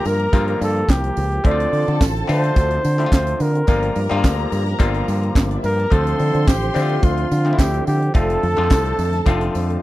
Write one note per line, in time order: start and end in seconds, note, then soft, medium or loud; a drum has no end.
0.00 0.17 D3 medium
0.00 0.17 F3 medium
0.00 1.42 F3 medium
0.00 0.17 G3 medium
0.00 0.18 A#3 medium
0.00 1.42 A#3 medium
0.00 0.18 F4 medium
0.00 1.42 G4 medium
0.00 1.13 A#4 loud
0.00 1.13 A#5 loud
0.05 0.26 G2 loud
0.05 0.62 A#4 loud
0.05 open hi-hat medium
0.05 tambourine soft
0.19 closed hi-hat soft
0.33 0.54 G2 loud
0.33 1.18 D3 medium
0.33 1.18 F3 medium
0.33 1.19 G3 medium
0.33 1.19 A#3 medium
0.33 1.19 F4 medium
0.33 kick loud
0.33 closed hi-hat medium
0.33 tambourine medium
0.48 closed hi-hat soft
0.61 0.82 G2 loud
0.61 0.91 A4 medium
0.61 open hi-hat medium
0.61 tambourine medium
0.76 closed hi-hat soft
0.89 1.10 C2 medium
0.89 1.48 G4 medium
0.89 kick loud
0.89 snare loud
0.89 clap loud
0.89 closed hi-hat medium
0.89 tambourine medium
1.04 closed hi-hat medium
1.16 1.38 C#2 medium
1.16 open hi-hat medium
1.16 tambourine soft
1.32 closed hi-hat soft
1.44 1.66 D2 loud
1.44 2.09 D3 medium
1.44 3.66 D3 medium
1.44 2.09 F3 medium
1.44 2.09 A3 medium
1.44 2.09 C4 medium
1.44 3.66 C4 medium
1.44 1.52 E4 medium
1.44 3.66 F4 medium
1.44 3.36 A4 loud
1.44 2.02 D5 loud
1.44 3.36 A5 loud
1.44 kick loud
1.44 closed hi-hat medium
1.51 2.12 F4 medium
1.60 closed hi-hat medium
1.73 1.84 D3 medium
1.73 open hi-hat medium
1.88 1.98 D3 medium
1.88 closed hi-hat soft
2.01 2.22 A1 medium
2.01 kick loud
2.01 snare loud
2.01 clap medium
2.01 closed hi-hat medium
2.01 tambourine loud
2.16 closed hi-hat soft
2.27 2.81 D3 medium
2.27 2.50 D3 medium
2.27 2.82 F3 medium
2.27 2.82 A3 medium
2.27 2.82 C4 medium
2.27 2.82 F4 medium
2.27 3.09 C5 loud
2.27 open hi-hat medium
2.27 tambourine medium
2.44 closed hi-hat medium
2.56 2.77 D2 loud
2.56 kick loud
2.56 closed hi-hat medium
2.56 tambourine medium
2.71 closed hi-hat soft
2.84 3.05 D3 loud
2.84 open hi-hat medium
2.84 tambourine medium
2.98 3.52 D3 medium
2.98 3.52 F3 medium
2.98 3.52 A3 medium
2.98 3.52 C4 medium
2.98 3.06 E4 medium
2.98 closed hi-hat soft
3.06 3.56 F4 medium
3.12 3.33 D2 loud
3.12 3.43 C5 loud
3.12 kick loud
3.12 snare loud
3.12 clap loud
3.12 closed hi-hat medium
3.12 tambourine medium
3.27 closed hi-hat medium
3.40 3.61 D3 loud
3.40 4.53 A#4 medium
3.40 open hi-hat medium
3.40 tambourine medium
3.55 closed hi-hat soft
3.67 3.89 G1 loud
3.67 4.00 D3 medium
3.67 4.00 F3 medium
3.67 5.89 F3 medium
3.67 4.00 G3 medium
3.67 5.89 A#3 medium
3.67 4.00 A#3 medium
3.67 4.01 F4 medium
3.67 5.89 G4 medium
3.67 5.41 A#4 loud
3.67 5.41 A#5 loud
3.67 kick loud
3.67 closed hi-hat medium
3.67 tambourine soft
3.83 closed hi-hat soft
3.96 4.07 G2 loud
3.96 open hi-hat medium
3.96 tambourine soft
4.09 4.21 G2 medium
4.09 4.63 D3 medium
4.09 4.63 F3 medium
4.09 4.64 G3 medium
4.09 4.17 A3 medium
4.09 4.64 F4 loud
4.09 closed hi-hat soft
4.17 4.67 A#3 medium
4.24 4.45 D2 loud
4.24 kick loud
4.24 snare loud
4.24 clap loud
4.24 closed hi-hat medium
4.24 tambourine loud
4.39 closed hi-hat soft
4.52 4.73 G2 loud
4.52 open hi-hat medium
4.52 tambourine medium
4.66 snare soft
4.66 closed hi-hat soft
4.79 5.01 G1 loud
4.79 5.65 D3 loud
4.79 5.65 F3 medium
4.79 5.65 G3 medium
4.79 5.65 A#3 medium
4.79 5.66 F4 loud
4.79 kick loud
4.79 closed hi-hat medium
4.79 tambourine medium
4.94 closed hi-hat soft
5.08 5.29 G2 loud
5.08 open hi-hat medium
5.08 tambourine medium
5.23 closed hi-hat soft
5.35 5.56 G1 loud
5.35 kick loud
5.35 snare loud
5.35 clap loud
5.35 closed hi-hat medium
5.35 tambourine medium
5.50 5.57 D4 medium
5.50 5.57 D5 medium
5.50 closed hi-hat medium
5.57 5.64 E4 medium
5.57 5.64 E5 medium
5.63 5.85 G2 loud
5.63 5.71 F4 medium
5.63 5.94 A#4 loud
5.63 5.71 F5 medium
5.63 open hi-hat medium
5.63 tambourine soft
5.71 5.79 G4 medium
5.71 5.79 G5 medium
5.79 5.85 A4 medium
5.79 5.85 A5 medium
5.79 closed hi-hat soft
5.85 5.92 A#4 loud
5.85 5.92 A#5 loud
5.90 6.13 D2 loud
5.90 6.55 D3 medium
5.90 9.82 D3 medium
5.90 6.56 F3 medium
5.90 9.82 F3 medium
5.90 6.56 A3 medium
5.90 8.13 C4 medium
5.90 6.56 C4 medium
5.90 6.56 F4 medium
5.90 6.49 A4 loud
5.90 7.83 C5 loud
5.90 7.83 C6 loud
5.90 kick loud
5.90 closed hi-hat medium
6.07 closed hi-hat medium
6.19 6.31 D3 medium
6.19 open hi-hat medium
6.19 tambourine soft
6.34 6.44 D3 medium
6.34 closed hi-hat soft
6.48 6.68 A1 medium
6.48 7.05 G4 loud
6.48 kick loud
6.48 snare loud
6.48 clap medium
6.48 closed hi-hat medium
6.48 tambourine medium
6.62 closed hi-hat soft
6.74 7.28 D3 medium
6.74 6.97 D3 medium
6.74 7.28 F3 medium
6.74 7.28 A3 medium
6.74 7.29 C4 medium
6.74 6.82 E4 medium
6.74 open hi-hat medium
6.74 tambourine medium
6.82 7.32 F4 medium
6.89 closed hi-hat soft
7.03 7.24 D2 loud
7.03 7.61 F4 loud
7.03 kick loud
7.03 closed hi-hat medium
7.03 tambourine soft
7.17 closed hi-hat soft
7.31 7.52 D3 loud
7.31 open hi-hat medium
7.31 tambourine medium
7.45 7.99 D3 medium
7.45 7.99 F3 medium
7.45 7.99 A3 medium
7.45 7.99 C4 medium
7.45 7.52 D4 medium
7.45 closed hi-hat soft
7.53 8.03 E4 medium
7.59 7.80 D2 loud
7.59 7.87 G4 loud
7.59 kick loud
7.59 snare loud
7.59 clap loud
7.59 closed hi-hat medium
7.59 tambourine medium
7.74 closed hi-hat medium
7.87 8.08 D3 loud
7.87 8.13 G4 medium
7.87 open hi-hat medium
7.87 tambourine medium
8.02 closed hi-hat soft
8.14 8.36 F1 loud
8.14 8.47 D3 medium
8.14 8.47 F3 medium
8.14 9.82 A3 medium
8.14 8.47 A3 medium
8.14 8.47 C4 medium
8.14 8.48 F4 medium
8.14 9.82 A4 loud
8.14 9.79 A4 loud
8.14 9.82 A5 loud
8.14 kick loud
8.14 closed hi-hat medium
8.14 tambourine soft
8.30 closed hi-hat medium
8.43 8.54 F2 loud
8.43 open hi-hat medium
8.57 8.68 F2 medium
8.57 9.10 D3 medium
8.57 9.11 F3 medium
8.57 8.64 G#3 medium
8.57 9.11 C4 medium
8.57 9.11 F4 medium
8.57 closed hi-hat soft
8.64 9.14 A3 medium
8.70 8.92 C2 medium
8.70 kick loud
8.70 snare loud
8.70 clap medium
8.70 closed hi-hat medium
8.70 tambourine loud
8.85 closed hi-hat soft
8.98 9.19 F2 medium
8.98 open hi-hat medium
8.98 tambourine medium
9.13 snare soft
9.13 closed hi-hat soft
9.26 9.48 F1 loud
9.26 9.82 D3 loud
9.26 9.82 F3 medium
9.26 9.82 A3 medium
9.26 9.82 C4 medium
9.26 9.82 F4 loud
9.26 kick loud
9.26 closed hi-hat medium
9.26 tambourine medium
9.41 closed hi-hat soft
9.55 9.76 F2 loud
9.55 open hi-hat medium
9.55 tambourine medium
9.70 closed hi-hat soft